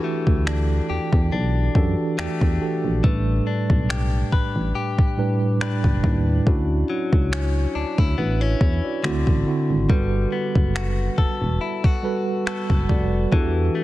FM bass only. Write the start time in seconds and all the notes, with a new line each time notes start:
0.27 D2
0.90 E2
1.13 E2
1.33 B1
1.75 F#2
2.19 E2
2.41 E2
2.85 A#1
3.04 A1
3.70 B1
4.33 A1
4.56 A1
5.84 F#1
6.04 D#2
6.47 D2
7.13 C#2
7.75 D2
7.98 D2
8.19 A1
8.61 E2
9.04 D2
9.27 A1
9.70 G#1
9.90 G1
10.56 F#1
11.18 E1
11.42 E1
12.70 F#1
12.90 F1
13.33 E2